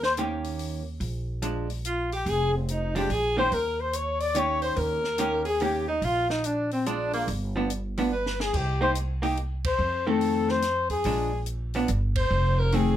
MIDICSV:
0, 0, Header, 1, 6, 480
1, 0, Start_track
1, 0, Tempo, 418410
1, 1160, Time_signature, 3, 2, 24, 8
1, 14876, End_track
2, 0, Start_track
2, 0, Title_t, "Alto saxophone"
2, 0, Program_c, 0, 65
2, 41, Note_on_c, 0, 72, 67
2, 193, Note_off_c, 0, 72, 0
2, 2132, Note_on_c, 0, 65, 57
2, 2416, Note_off_c, 0, 65, 0
2, 2441, Note_on_c, 0, 67, 69
2, 2623, Note_on_c, 0, 68, 66
2, 2640, Note_off_c, 0, 67, 0
2, 2909, Note_off_c, 0, 68, 0
2, 2916, Note_on_c, 0, 60, 35
2, 3100, Note_off_c, 0, 60, 0
2, 3100, Note_on_c, 0, 63, 52
2, 3388, Note_off_c, 0, 63, 0
2, 3394, Note_on_c, 0, 67, 63
2, 3561, Note_on_c, 0, 68, 61
2, 3578, Note_off_c, 0, 67, 0
2, 3871, Note_off_c, 0, 68, 0
2, 3882, Note_on_c, 0, 72, 83
2, 4064, Note_on_c, 0, 70, 68
2, 4081, Note_off_c, 0, 72, 0
2, 4359, Note_on_c, 0, 72, 61
2, 4376, Note_off_c, 0, 70, 0
2, 4532, Note_on_c, 0, 73, 66
2, 4549, Note_off_c, 0, 72, 0
2, 4817, Note_on_c, 0, 74, 75
2, 4835, Note_off_c, 0, 73, 0
2, 4998, Note_on_c, 0, 73, 67
2, 5015, Note_off_c, 0, 74, 0
2, 5295, Note_off_c, 0, 73, 0
2, 5302, Note_on_c, 0, 72, 70
2, 5465, Note_on_c, 0, 70, 67
2, 5482, Note_off_c, 0, 72, 0
2, 6246, Note_off_c, 0, 70, 0
2, 6253, Note_on_c, 0, 68, 64
2, 6443, Note_on_c, 0, 67, 61
2, 6460, Note_off_c, 0, 68, 0
2, 6738, Note_off_c, 0, 67, 0
2, 6745, Note_on_c, 0, 63, 69
2, 6929, Note_on_c, 0, 65, 75
2, 6946, Note_off_c, 0, 63, 0
2, 7218, Note_off_c, 0, 65, 0
2, 7225, Note_on_c, 0, 63, 62
2, 7409, Note_on_c, 0, 62, 54
2, 7426, Note_off_c, 0, 63, 0
2, 7708, Note_off_c, 0, 62, 0
2, 7714, Note_on_c, 0, 60, 59
2, 7881, Note_on_c, 0, 62, 67
2, 7899, Note_off_c, 0, 60, 0
2, 8182, Note_off_c, 0, 62, 0
2, 8189, Note_on_c, 0, 58, 63
2, 8343, Note_off_c, 0, 58, 0
2, 9317, Note_on_c, 0, 71, 67
2, 9636, Note_on_c, 0, 68, 69
2, 9653, Note_off_c, 0, 71, 0
2, 9814, Note_on_c, 0, 67, 62
2, 9831, Note_off_c, 0, 68, 0
2, 10107, Note_off_c, 0, 67, 0
2, 10114, Note_on_c, 0, 72, 67
2, 10267, Note_off_c, 0, 72, 0
2, 11073, Note_on_c, 0, 72, 66
2, 11556, Note_on_c, 0, 69, 61
2, 11573, Note_off_c, 0, 72, 0
2, 12031, Note_on_c, 0, 72, 73
2, 12048, Note_off_c, 0, 69, 0
2, 12503, Note_off_c, 0, 72, 0
2, 12510, Note_on_c, 0, 68, 69
2, 13112, Note_off_c, 0, 68, 0
2, 13954, Note_on_c, 0, 72, 72
2, 14436, Note_on_c, 0, 70, 70
2, 14453, Note_off_c, 0, 72, 0
2, 14627, Note_on_c, 0, 68, 62
2, 14644, Note_off_c, 0, 70, 0
2, 14876, Note_off_c, 0, 68, 0
2, 14876, End_track
3, 0, Start_track
3, 0, Title_t, "Flugelhorn"
3, 0, Program_c, 1, 56
3, 59, Note_on_c, 1, 72, 84
3, 152, Note_off_c, 1, 72, 0
3, 2162, Note_on_c, 1, 65, 62
3, 2432, Note_off_c, 1, 65, 0
3, 2468, Note_on_c, 1, 67, 82
3, 2646, Note_on_c, 1, 68, 84
3, 2664, Note_off_c, 1, 67, 0
3, 2934, Note_off_c, 1, 68, 0
3, 2950, Note_on_c, 1, 60, 42
3, 3119, Note_on_c, 1, 63, 63
3, 3134, Note_off_c, 1, 60, 0
3, 3405, Note_off_c, 1, 63, 0
3, 3412, Note_on_c, 1, 67, 77
3, 3595, Note_on_c, 1, 68, 67
3, 3612, Note_off_c, 1, 67, 0
3, 3888, Note_off_c, 1, 68, 0
3, 3897, Note_on_c, 1, 72, 92
3, 4063, Note_on_c, 1, 70, 77
3, 4081, Note_off_c, 1, 72, 0
3, 4376, Note_on_c, 1, 72, 78
3, 4393, Note_off_c, 1, 70, 0
3, 4551, Note_on_c, 1, 73, 80
3, 4568, Note_off_c, 1, 72, 0
3, 4847, Note_on_c, 1, 74, 97
3, 4864, Note_off_c, 1, 73, 0
3, 5036, Note_on_c, 1, 73, 82
3, 5053, Note_off_c, 1, 74, 0
3, 5322, Note_off_c, 1, 73, 0
3, 5329, Note_on_c, 1, 72, 78
3, 5503, Note_on_c, 1, 70, 84
3, 5520, Note_off_c, 1, 72, 0
3, 6280, Note_off_c, 1, 70, 0
3, 6290, Note_on_c, 1, 68, 84
3, 6466, Note_on_c, 1, 67, 70
3, 6484, Note_off_c, 1, 68, 0
3, 6756, Note_off_c, 1, 67, 0
3, 6763, Note_on_c, 1, 63, 82
3, 6939, Note_on_c, 1, 65, 80
3, 6957, Note_off_c, 1, 63, 0
3, 7233, Note_off_c, 1, 65, 0
3, 7240, Note_on_c, 1, 63, 78
3, 7414, Note_on_c, 1, 62, 67
3, 7431, Note_off_c, 1, 63, 0
3, 7716, Note_off_c, 1, 62, 0
3, 7726, Note_on_c, 1, 60, 75
3, 7890, Note_on_c, 1, 62, 72
3, 7907, Note_off_c, 1, 60, 0
3, 8186, Note_off_c, 1, 62, 0
3, 8193, Note_on_c, 1, 58, 74
3, 8291, Note_off_c, 1, 58, 0
3, 9345, Note_on_c, 1, 71, 74
3, 9662, Note_on_c, 1, 68, 83
3, 9679, Note_off_c, 1, 71, 0
3, 9835, Note_on_c, 1, 67, 76
3, 9852, Note_off_c, 1, 68, 0
3, 10127, Note_off_c, 1, 67, 0
3, 10132, Note_on_c, 1, 72, 87
3, 10226, Note_off_c, 1, 72, 0
3, 11102, Note_on_c, 1, 72, 90
3, 11578, Note_on_c, 1, 69, 80
3, 11595, Note_off_c, 1, 72, 0
3, 12059, Note_on_c, 1, 72, 95
3, 12077, Note_off_c, 1, 69, 0
3, 12514, Note_off_c, 1, 72, 0
3, 12521, Note_on_c, 1, 68, 78
3, 13118, Note_off_c, 1, 68, 0
3, 13984, Note_on_c, 1, 72, 77
3, 14465, Note_on_c, 1, 70, 86
3, 14482, Note_off_c, 1, 72, 0
3, 14636, Note_on_c, 1, 68, 71
3, 14653, Note_off_c, 1, 70, 0
3, 14876, Note_off_c, 1, 68, 0
3, 14876, End_track
4, 0, Start_track
4, 0, Title_t, "Hollow-body jazz guitar"
4, 0, Program_c, 2, 26
4, 206, Note_on_c, 2, 51, 59
4, 212, Note_on_c, 2, 58, 62
4, 216, Note_on_c, 2, 67, 63
4, 218, Note_on_c, 2, 61, 62
4, 933, Note_off_c, 2, 51, 0
4, 936, Note_off_c, 2, 58, 0
4, 938, Note_off_c, 2, 67, 0
4, 939, Note_off_c, 2, 61, 0
4, 1631, Note_on_c, 2, 53, 55
4, 1638, Note_on_c, 2, 56, 51
4, 1642, Note_on_c, 2, 62, 56
4, 1916, Note_off_c, 2, 53, 0
4, 1920, Note_off_c, 2, 56, 0
4, 1922, Note_off_c, 2, 62, 0
4, 3386, Note_on_c, 2, 53, 66
4, 3400, Note_on_c, 2, 56, 68
4, 3402, Note_on_c, 2, 62, 78
4, 3538, Note_off_c, 2, 53, 0
4, 3545, Note_off_c, 2, 56, 0
4, 3546, Note_off_c, 2, 62, 0
4, 3863, Note_on_c, 2, 51, 60
4, 3875, Note_on_c, 2, 58, 61
4, 3876, Note_on_c, 2, 61, 61
4, 3882, Note_on_c, 2, 67, 61
4, 4017, Note_off_c, 2, 51, 0
4, 4023, Note_off_c, 2, 58, 0
4, 4023, Note_off_c, 2, 61, 0
4, 4026, Note_off_c, 2, 67, 0
4, 4987, Note_on_c, 2, 51, 53
4, 5001, Note_on_c, 2, 58, 52
4, 5003, Note_on_c, 2, 61, 57
4, 5007, Note_on_c, 2, 67, 59
4, 5720, Note_off_c, 2, 51, 0
4, 5727, Note_off_c, 2, 58, 0
4, 5728, Note_off_c, 2, 61, 0
4, 5730, Note_off_c, 2, 67, 0
4, 5949, Note_on_c, 2, 51, 53
4, 5955, Note_on_c, 2, 58, 53
4, 5960, Note_on_c, 2, 61, 57
4, 5966, Note_on_c, 2, 67, 58
4, 6233, Note_off_c, 2, 51, 0
4, 6236, Note_off_c, 2, 58, 0
4, 6238, Note_off_c, 2, 61, 0
4, 6241, Note_off_c, 2, 67, 0
4, 6435, Note_on_c, 2, 51, 59
4, 6444, Note_on_c, 2, 58, 56
4, 6445, Note_on_c, 2, 61, 60
4, 6446, Note_on_c, 2, 67, 57
4, 6715, Note_off_c, 2, 51, 0
4, 6720, Note_off_c, 2, 58, 0
4, 6721, Note_off_c, 2, 61, 0
4, 6721, Note_off_c, 2, 67, 0
4, 7876, Note_on_c, 2, 53, 44
4, 7879, Note_on_c, 2, 56, 50
4, 7891, Note_on_c, 2, 62, 54
4, 8355, Note_off_c, 2, 53, 0
4, 8357, Note_off_c, 2, 56, 0
4, 8362, Note_off_c, 2, 62, 0
4, 8669, Note_on_c, 2, 53, 65
4, 8680, Note_on_c, 2, 59, 62
4, 8686, Note_on_c, 2, 62, 64
4, 8819, Note_off_c, 2, 53, 0
4, 8824, Note_off_c, 2, 59, 0
4, 8827, Note_off_c, 2, 62, 0
4, 9152, Note_on_c, 2, 53, 64
4, 9161, Note_on_c, 2, 59, 73
4, 9165, Note_on_c, 2, 62, 75
4, 9300, Note_off_c, 2, 53, 0
4, 9304, Note_off_c, 2, 59, 0
4, 9307, Note_off_c, 2, 62, 0
4, 10105, Note_on_c, 2, 58, 54
4, 10118, Note_on_c, 2, 63, 51
4, 10123, Note_on_c, 2, 67, 54
4, 10257, Note_off_c, 2, 58, 0
4, 10264, Note_off_c, 2, 63, 0
4, 10266, Note_off_c, 2, 67, 0
4, 10580, Note_on_c, 2, 58, 61
4, 10588, Note_on_c, 2, 63, 66
4, 10593, Note_on_c, 2, 67, 67
4, 10735, Note_off_c, 2, 58, 0
4, 10739, Note_off_c, 2, 63, 0
4, 10741, Note_off_c, 2, 67, 0
4, 11548, Note_on_c, 2, 51, 55
4, 11553, Note_on_c, 2, 57, 64
4, 11559, Note_on_c, 2, 60, 63
4, 12163, Note_off_c, 2, 51, 0
4, 12166, Note_off_c, 2, 57, 0
4, 12168, Note_off_c, 2, 60, 0
4, 12683, Note_on_c, 2, 53, 53
4, 12691, Note_on_c, 2, 56, 55
4, 12692, Note_on_c, 2, 62, 61
4, 12961, Note_off_c, 2, 53, 0
4, 12966, Note_off_c, 2, 56, 0
4, 12966, Note_off_c, 2, 62, 0
4, 13479, Note_on_c, 2, 53, 64
4, 13487, Note_on_c, 2, 59, 72
4, 13490, Note_on_c, 2, 62, 73
4, 13625, Note_off_c, 2, 53, 0
4, 13630, Note_off_c, 2, 59, 0
4, 13631, Note_off_c, 2, 62, 0
4, 14601, Note_on_c, 2, 51, 52
4, 14612, Note_on_c, 2, 57, 58
4, 14618, Note_on_c, 2, 60, 63
4, 14876, Note_off_c, 2, 51, 0
4, 14876, Note_off_c, 2, 57, 0
4, 14876, Note_off_c, 2, 60, 0
4, 14876, End_track
5, 0, Start_track
5, 0, Title_t, "Upright bass"
5, 0, Program_c, 3, 32
5, 0, Note_on_c, 3, 39, 83
5, 1109, Note_off_c, 3, 39, 0
5, 1148, Note_on_c, 3, 34, 81
5, 2547, Note_off_c, 3, 34, 0
5, 2592, Note_on_c, 3, 29, 79
5, 3508, Note_off_c, 3, 29, 0
5, 3553, Note_on_c, 3, 34, 71
5, 4001, Note_off_c, 3, 34, 0
5, 4037, Note_on_c, 3, 39, 75
5, 5429, Note_off_c, 3, 39, 0
5, 5465, Note_on_c, 3, 39, 81
5, 6863, Note_off_c, 3, 39, 0
5, 6903, Note_on_c, 3, 34, 79
5, 8303, Note_off_c, 3, 34, 0
5, 8345, Note_on_c, 3, 31, 79
5, 9744, Note_off_c, 3, 31, 0
5, 9790, Note_on_c, 3, 36, 75
5, 11188, Note_off_c, 3, 36, 0
5, 11227, Note_on_c, 3, 41, 80
5, 12627, Note_off_c, 3, 41, 0
5, 12674, Note_on_c, 3, 34, 79
5, 13590, Note_off_c, 3, 34, 0
5, 13636, Note_on_c, 3, 31, 74
5, 14083, Note_off_c, 3, 31, 0
5, 14117, Note_on_c, 3, 29, 81
5, 14876, Note_off_c, 3, 29, 0
5, 14876, End_track
6, 0, Start_track
6, 0, Title_t, "Drums"
6, 35, Note_on_c, 9, 38, 54
6, 150, Note_off_c, 9, 38, 0
6, 196, Note_on_c, 9, 42, 45
6, 311, Note_off_c, 9, 42, 0
6, 510, Note_on_c, 9, 46, 36
6, 625, Note_off_c, 9, 46, 0
6, 679, Note_on_c, 9, 46, 41
6, 793, Note_off_c, 9, 46, 0
6, 1154, Note_on_c, 9, 46, 41
6, 1268, Note_off_c, 9, 46, 0
6, 1632, Note_on_c, 9, 42, 47
6, 1747, Note_off_c, 9, 42, 0
6, 1947, Note_on_c, 9, 46, 37
6, 2062, Note_off_c, 9, 46, 0
6, 2119, Note_on_c, 9, 42, 48
6, 2233, Note_off_c, 9, 42, 0
6, 2435, Note_on_c, 9, 46, 34
6, 2550, Note_off_c, 9, 46, 0
6, 2597, Note_on_c, 9, 46, 42
6, 2711, Note_off_c, 9, 46, 0
6, 3080, Note_on_c, 9, 42, 46
6, 3194, Note_off_c, 9, 42, 0
6, 3390, Note_on_c, 9, 46, 36
6, 3505, Note_off_c, 9, 46, 0
6, 3556, Note_on_c, 9, 46, 39
6, 3671, Note_off_c, 9, 46, 0
6, 4035, Note_on_c, 9, 46, 42
6, 4150, Note_off_c, 9, 46, 0
6, 4511, Note_on_c, 9, 42, 49
6, 4626, Note_off_c, 9, 42, 0
6, 4822, Note_on_c, 9, 46, 36
6, 4937, Note_off_c, 9, 46, 0
6, 4987, Note_on_c, 9, 42, 46
6, 5102, Note_off_c, 9, 42, 0
6, 5298, Note_on_c, 9, 46, 35
6, 5412, Note_off_c, 9, 46, 0
6, 5466, Note_on_c, 9, 46, 42
6, 5581, Note_off_c, 9, 46, 0
6, 5782, Note_on_c, 9, 38, 37
6, 5897, Note_off_c, 9, 38, 0
6, 5942, Note_on_c, 9, 42, 47
6, 6057, Note_off_c, 9, 42, 0
6, 6252, Note_on_c, 9, 46, 37
6, 6367, Note_off_c, 9, 46, 0
6, 6423, Note_on_c, 9, 46, 41
6, 6538, Note_off_c, 9, 46, 0
6, 6907, Note_on_c, 9, 46, 42
6, 7022, Note_off_c, 9, 46, 0
6, 7226, Note_on_c, 9, 38, 52
6, 7341, Note_off_c, 9, 38, 0
6, 7386, Note_on_c, 9, 42, 47
6, 7501, Note_off_c, 9, 42, 0
6, 7702, Note_on_c, 9, 46, 36
6, 7817, Note_off_c, 9, 46, 0
6, 7873, Note_on_c, 9, 42, 45
6, 7988, Note_off_c, 9, 42, 0
6, 8182, Note_on_c, 9, 46, 35
6, 8297, Note_off_c, 9, 46, 0
6, 8349, Note_on_c, 9, 46, 45
6, 8463, Note_off_c, 9, 46, 0
6, 8833, Note_on_c, 9, 42, 48
6, 8948, Note_off_c, 9, 42, 0
6, 9149, Note_on_c, 9, 46, 37
6, 9264, Note_off_c, 9, 46, 0
6, 9478, Note_on_c, 9, 38, 52
6, 9593, Note_off_c, 9, 38, 0
6, 9637, Note_on_c, 9, 38, 68
6, 9752, Note_off_c, 9, 38, 0
6, 9794, Note_on_c, 9, 36, 67
6, 9796, Note_on_c, 9, 49, 61
6, 9908, Note_off_c, 9, 36, 0
6, 9911, Note_off_c, 9, 49, 0
6, 10270, Note_on_c, 9, 42, 50
6, 10385, Note_off_c, 9, 42, 0
6, 10586, Note_on_c, 9, 46, 35
6, 10701, Note_off_c, 9, 46, 0
6, 10754, Note_on_c, 9, 42, 46
6, 10868, Note_off_c, 9, 42, 0
6, 11064, Note_on_c, 9, 51, 68
6, 11068, Note_on_c, 9, 36, 75
6, 11179, Note_off_c, 9, 51, 0
6, 11183, Note_off_c, 9, 36, 0
6, 11712, Note_on_c, 9, 46, 42
6, 11827, Note_off_c, 9, 46, 0
6, 12029, Note_on_c, 9, 38, 36
6, 12144, Note_off_c, 9, 38, 0
6, 12187, Note_on_c, 9, 42, 49
6, 12190, Note_on_c, 9, 38, 35
6, 12302, Note_off_c, 9, 42, 0
6, 12305, Note_off_c, 9, 38, 0
6, 12501, Note_on_c, 9, 46, 35
6, 12507, Note_on_c, 9, 36, 51
6, 12616, Note_off_c, 9, 46, 0
6, 12621, Note_off_c, 9, 36, 0
6, 12664, Note_on_c, 9, 46, 44
6, 12778, Note_off_c, 9, 46, 0
6, 13147, Note_on_c, 9, 42, 50
6, 13262, Note_off_c, 9, 42, 0
6, 13464, Note_on_c, 9, 46, 37
6, 13579, Note_off_c, 9, 46, 0
6, 13630, Note_on_c, 9, 42, 49
6, 13745, Note_off_c, 9, 42, 0
6, 13945, Note_on_c, 9, 51, 66
6, 13948, Note_on_c, 9, 36, 77
6, 14060, Note_off_c, 9, 51, 0
6, 14063, Note_off_c, 9, 36, 0
6, 14596, Note_on_c, 9, 46, 42
6, 14710, Note_off_c, 9, 46, 0
6, 14876, End_track
0, 0, End_of_file